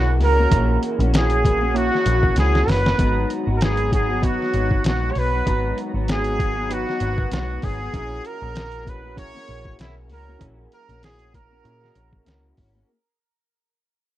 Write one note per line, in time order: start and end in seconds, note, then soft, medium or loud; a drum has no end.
0.00 0.21 B1 medium
0.00 0.21 A#2 medium
0.00 0.20 E3 medium
0.00 0.20 A#3 medium
0.00 0.50 A#3 medium
0.00 0.21 C#4 loud
0.00 0.51 C#4 medium
0.00 0.52 E4 medium
0.00 0.17 F#4 loud
0.00 0.22 F#4 medium
0.00 3.01 G#4 medium
0.21 0.45 C#2 medium
0.21 0.38 E3 medium
0.21 0.38 A#3 medium
0.21 0.38 C#4 medium
0.21 0.36 F#4 medium
0.21 0.80 A#4 medium
0.21 open hi-hat soft
0.38 0.51 A#3 soft
0.38 0.51 C#4 soft
0.38 0.52 F#4 soft
0.50 0.76 A#1 medium
0.50 0.99 A#2 medium
0.50 1.00 E3 medium
0.50 1.51 A#3 medium
0.50 1.00 A#3 medium
0.50 1.52 C#4 medium
0.50 0.99 C#4 medium
0.50 1.52 E4 medium
0.50 0.98 F#4 medium
0.50 1.52 A#4 medium
0.50 kick loud
0.50 closed hi-hat medium
0.83 closed hi-hat medium
0.99 1.88 A#1 medium
0.99 1.13 A#3 soft
0.99 1.13 C#4 soft
0.99 1.13 F#4 medium
0.99 closed hi-hat medium
1.13 1.44 A#2 medium
1.13 1.43 E3 medium
1.13 1.43 A#3 medium
1.13 1.44 C#4 medium
1.13 1.45 F#4 medium
1.13 snare loud
1.13 closed hi-hat medium
1.18 1.78 G#4 medium
1.30 closed hi-hat medium
1.44 1.61 E3 medium
1.44 1.61 A#3 medium
1.44 1.61 C#4 medium
1.44 1.60 F#4 medium
1.44 kick medium
1.44 closed hi-hat medium
1.61 1.93 A#3 soft
1.61 1.92 C#4 soft
1.61 1.90 F#4 medium
1.74 2.75 A#3 medium
1.74 2.75 C#4 medium
1.74 2.76 E4 medium
1.74 2.76 F#4 medium
1.74 2.38 F#4 loud
1.74 closed hi-hat medium
1.92 2.05 A#3 soft
1.92 2.06 C#4 soft
1.92 2.06 F#4 medium
1.92 snare soft
2.06 2.31 A#1 medium
2.06 2.37 E3 medium
2.06 2.36 A#3 medium
2.06 2.37 C#4 medium
2.06 2.37 F#4 medium
2.06 closed hi-hat medium
2.23 kick medium
2.36 2.61 C#2 medium
2.36 2.68 A#2 medium
2.36 2.67 E3 medium
2.36 2.68 A#3 medium
2.36 2.68 C#4 medium
2.36 2.69 F#4 medium
2.36 2.71 G#4 medium
2.36 snare medium
2.36 closed hi-hat medium
2.55 snare medium
2.67 2.92 F#1 medium
2.67 2.85 E3 medium
2.67 2.85 A#3 medium
2.67 2.84 C#4 medium
2.67 2.83 F#4 medium
2.67 3.31 B4 loud
2.67 snare medium
2.67 open hi-hat medium
2.84 3.00 A#3 soft
2.84 2.99 C#4 soft
2.84 2.98 F#4 soft
2.84 snare medium
2.98 3.24 G#1 medium
2.98 3.47 G#2 medium
2.98 3.47 D#3 medium
2.98 3.48 F#3 medium
2.98 3.99 B3 medium
2.98 3.47 B3 medium
2.98 3.99 D#4 medium
2.98 3.99 F#4 medium
2.98 3.46 F#4 medium
2.98 3.07 A4 medium
2.98 kick medium
2.98 closed hi-hat medium
3.07 4.03 A#5 medium
3.30 closed hi-hat medium
3.47 4.36 G#1 medium
3.47 3.60 F#3 soft
3.47 3.61 B3 soft
3.47 3.61 F#4 medium
3.56 3.64 A#4 medium
3.61 3.92 G#2 medium
3.61 3.90 D#3 medium
3.61 3.91 F#3 medium
3.61 3.92 B3 medium
3.61 3.92 F#4 medium
3.61 3.93 G#4 medium
3.61 snare loud
3.61 closed hi-hat medium
3.77 closed hi-hat medium
3.91 4.08 D#3 medium
3.91 4.09 F#3 medium
3.91 4.08 B3 medium
3.91 4.08 F#4 medium
3.91 4.26 G#4 medium
3.91 kick medium
3.91 closed hi-hat medium
4.09 4.41 F#3 soft
4.09 4.40 B3 soft
4.09 4.38 F#4 soft
4.21 5.22 B3 medium
4.21 5.23 D#4 medium
4.21 5.23 F#4 medium
4.21 4.85 F#4 medium
4.21 5.23 C#5 medium
4.21 kick medium
4.21 closed hi-hat medium
4.39 4.53 F#3 soft
4.39 4.54 B3 soft
4.39 4.53 F#4 medium
4.39 snare soft
4.53 4.78 G#1 medium
4.53 4.84 D#3 medium
4.53 4.84 F#3 medium
4.53 4.85 B3 medium
4.53 4.85 F#4 medium
4.53 closed hi-hat medium
4.71 kick medium
4.84 5.09 A#1 loud
4.84 5.15 G#2 medium
4.84 5.14 D#3 medium
4.84 5.15 F#3 medium
4.84 5.16 B3 medium
4.84 5.16 F#4 medium
4.84 5.13 F#4 medium
4.84 snare loud
4.84 closed hi-hat loud
5.12 5.32 D#3 medium
5.12 5.20 C#5 medium
5.12 open hi-hat medium
5.16 5.40 B1 loud
5.16 5.33 F#3 medium
5.16 5.32 B3 medium
5.16 5.31 F#4 medium
5.16 5.79 B4 loud
5.32 5.45 F#3 soft
5.32 5.45 B3 soft
5.32 5.46 F#4 soft
5.46 5.71 G#1 loud
5.46 5.94 G#2 medium
5.46 5.94 D#3 medium
5.46 5.94 F#3 medium
5.46 6.46 B3 medium
5.46 5.94 B3 medium
5.46 6.46 D#4 medium
5.46 5.93 F#4 medium
5.46 6.47 F#4 medium
5.46 6.47 A#5 medium
5.46 kick loud
5.46 closed hi-hat medium
5.78 closed hi-hat medium
5.94 6.83 G#1 loud
5.94 6.07 F#3 soft
5.94 6.08 B3 soft
5.94 6.08 F#4 medium
6.07 6.38 G#2 medium
6.07 6.37 D#3 medium
6.07 6.38 F#3 medium
6.07 6.39 B3 medium
6.07 6.39 F#4 medium
6.07 snare loud
6.07 closed hi-hat medium
6.12 6.74 G#4 loud
6.24 closed hi-hat medium
6.38 6.55 D#3 medium
6.38 6.56 F#3 medium
6.38 6.55 B3 medium
6.38 6.54 F#4 medium
6.38 kick medium
6.38 closed hi-hat medium
6.55 6.88 F#3 soft
6.55 6.87 B3 soft
6.55 6.86 F#4 medium
6.69 7.69 B3 medium
6.69 7.70 D#4 medium
6.69 7.70 F#4 medium
6.69 7.71 B4 medium
6.69 closed hi-hat medium
6.73 7.33 F#4 loud
6.87 7.00 F#3 soft
6.87 7.01 B3 medium
6.87 7.01 F#4 medium
6.87 snare soft
7.00 7.25 G#1 medium
7.00 7.31 D#3 medium
7.00 7.31 F#3 medium
7.00 7.31 B3 medium
7.00 7.32 F#4 medium
7.00 closed hi-hat medium
7.18 kick medium
7.31 7.56 B1 loud
7.31 7.62 G#2 medium
7.31 7.61 D#3 medium
7.31 7.62 F#3 medium
7.31 7.63 B3 medium
7.31 7.63 F#4 medium
7.31 7.66 F#4 medium
7.31 snare loud
7.31 closed hi-hat medium
7.62 7.88 G#1 medium
7.62 7.79 D#3 medium
7.62 7.80 F#3 medium
7.62 7.79 B3 medium
7.62 7.78 F#4 medium
7.62 8.28 G#4 loud
7.62 kick medium
7.62 open hi-hat soft
7.79 7.94 F#3 soft
7.79 7.94 B3 soft
7.79 7.93 F#4 medium
7.93 8.18 A#1 loud
7.93 8.41 A#2 medium
7.93 8.41 E3 medium
7.93 8.42 A#3 medium
7.93 8.94 C#4 medium
7.93 8.41 C#4 medium
7.93 8.94 E4 medium
7.93 8.40 F#4 medium
7.93 8.94 G#4 medium
7.93 8.95 A#4 medium
7.93 kick loud
7.93 closed hi-hat medium
8.25 8.91 A#4 loud
8.25 closed hi-hat medium
8.41 9.30 A#1 loud
8.41 8.55 A#3 soft
8.41 8.55 C#4 soft
8.41 8.55 F#4 medium
8.55 8.86 A#2 medium
8.55 8.84 E3 medium
8.55 8.85 A#3 medium
8.55 8.86 C#4 medium
8.55 8.87 F#4 medium
8.55 snare loud
8.55 closed hi-hat medium
8.72 closed hi-hat medium
8.86 9.03 E3 medium
8.86 9.03 A#3 medium
8.86 9.03 C#4 medium
8.86 9.02 F#4 medium
8.86 9.18 B4 medium
8.86 kick medium
8.86 closed hi-hat medium
9.03 9.35 A#3 soft
9.03 9.34 C#4 soft
9.03 9.33 F#4 medium
9.16 10.17 C#4 medium
9.16 10.17 E4 medium
9.16 10.17 G#4 medium
9.16 10.18 A#4 medium
9.16 9.76 C#5 loud
9.16 kick medium
9.16 closed hi-hat medium
9.34 9.48 A#3 soft
9.34 9.48 C#4 medium
9.34 9.48 F#4 medium
9.34 snare soft
9.48 9.73 A#1 medium
9.48 9.78 E3 medium
9.48 9.79 A#3 soft
9.48 9.79 C#4 medium
9.48 9.79 F#4 medium
9.48 closed hi-hat medium
9.65 kick medium
9.79 10.11 B1 loud
9.79 10.10 A#2 medium
9.79 10.08 E3 medium
9.79 10.10 A#3 medium
9.79 10.10 C#4 medium
9.79 9.94 E4 medium
9.79 10.11 F#4 medium
9.79 snare loud
9.79 closed hi-hat medium
10.10 10.35 C#2 medium
10.10 10.27 E3 medium
10.10 10.27 A#3 medium
10.10 10.26 C#4 medium
10.10 10.25 F#4 medium
10.10 10.44 A#4 medium
10.10 open hi-hat medium
10.26 10.40 A#3 soft
10.26 10.40 C#4 soft
10.26 10.40 F#4 medium
10.39 10.66 A#1 loud
10.39 10.88 A#2 medium
10.39 10.89 E3 medium
10.39 10.89 A#3 medium
10.39 11.40 C#4 medium
10.39 10.88 C#4 medium
10.39 11.40 E4 medium
10.39 10.87 F#4 medium
10.39 11.41 G#4 medium
10.39 11.41 A#4 medium
10.39 kick loud
10.39 closed hi-hat medium
10.72 11.01 A#4 loud
10.72 closed hi-hat medium
10.88 11.61 A#1 medium
10.88 11.02 A#3 soft
10.88 11.03 C#4 soft
10.88 11.02 F#4 medium
10.88 closed hi-hat medium
11.03 11.33 A#2 medium
11.03 11.32 E3 medium
11.03 11.33 A#3 medium
11.03 11.34 C#4 medium
11.03 11.34 F#4 medium
11.03 11.32 G#4 loud
11.03 snare loud
11.03 closed hi-hat medium
11.19 closed hi-hat medium
11.34 11.50 E3 medium
11.34 11.51 A#3 medium
11.34 11.50 C#4 medium
11.34 11.49 F#4 medium
11.34 12.54 A#4 medium
11.34 kick medium
11.34 closed hi-hat medium
11.51 11.82 A#3 soft
11.51 11.81 C#4 soft
11.51 11.80 F#4 medium
11.64 11.89 A#2 medium
11.64 12.64 C#4 medium
11.64 12.65 E4 medium
11.64 12.65 G#4 medium
11.64 12.65 A#4 medium
11.64 closed hi-hat medium
11.81 11.94 A#3 soft
11.81 11.95 C#4 soft
11.81 11.95 F#4 medium
11.81 snare soft
11.95 12.20 A#1 medium
11.95 12.25 E3 medium
11.95 12.25 A#3 medium
11.95 12.26 C#4 medium
11.95 12.26 F#4 medium
11.95 closed hi-hat medium
12.13 kick medium
12.26 12.51 C#2 loud
12.26 12.57 A#2 medium
12.26 12.55 E3 medium
12.26 12.56 A#3 loud
12.26 12.57 C#4 medium
12.26 12.58 F#4 loud
12.26 snare loud
12.26 closed hi-hat loud
12.56 12.82 G#1 medium
12.56 12.74 E3 medium
12.56 12.74 A#3 medium
12.56 12.74 C#4 medium
12.56 12.72 F#4 medium
12.56 kick medium
12.56 open hi-hat soft
12.73 12.89 A#3 soft
12.73 12.88 C#4 soft
12.73 12.88 F#4 medium